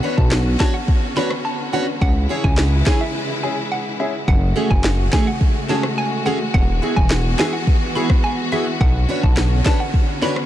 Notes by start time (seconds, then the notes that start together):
Already playing: D3 B3 C#4 F#4
0.03 C#4 D4 F#4 B4 C#5
0.17 B1 A5, kick
0.31 snare, clap
0.60 C#4 D4 F#4 C#5 A5, kick, snare, clap
0.74 F#5
0.88 kick
1.16 C#4 D4 F#4 B4 C#5 B5, snare
1.30 cross-stick
1.45 A5
1.73 C#4 D4 F#4 B4 C#5 F#5
1.87 muted steel-string acoustic guitar stroke
2.01 C#2 C#3 E3 G#3 E4 F#5, kick
2.29 C#4 E4 G#4 C#5
2.44 C#2 G#5, kick
2.57 snare, clap
2.86 C#4 E4 G#4 C#5 G#5, kick, snare, clap
3.01 E5
3.43 C#4 E4 G#4 G#5
3.72 F#5
3.99 C#4 E4 G#4 E5
4.28 F#1 C#3 G#3 A3 F#4 F#5, kick
4.56 A3 C#4 F#4 G#4
4.70 F#1 G#5, kick
4.84 snare, clap
5.12 A3 C#4 F#4 G#4 G#5, kick, snare, clap
5.27 F#5
5.41 kick
5.69 A3 C#4 F#4 G#4 A5, snare
5.83 cross-stick
5.98 G#5
6.25 A3 C#4 F#4 G#4 F#5
6.40 muted steel-string acoustic guitar stroke
6.54 E1 E3 B3 F#5, kick
6.82 B3 E4 F#4 G#4
6.96 E1 G#5, kick
7.10 snare, clap
7.39 B3 E4 F#4 G#4 G#5, snare, clap
7.53 F#5
7.67 kick
7.95 B3 E4 F#4 G#4 B5
8.10 kick, cross-stick
8.24 G#5
8.52 B3 E4 F#4 G#4 E5
8.66 muted steel-string acoustic guitar stroke
8.81 B1 D3 C#4 F#5, kick
9.09 C#4 D4 F#4 B4 C#5
9.23 B1 A5, kick
9.37 snare, clap
9.65 C#4 D4 F#4 B4 C#5 A5, kick, snare, clap
9.80 F#5
9.94 kick
10.21 C#4 D4 F#4 B4 C#5 B5, snare
10.36 cross-stick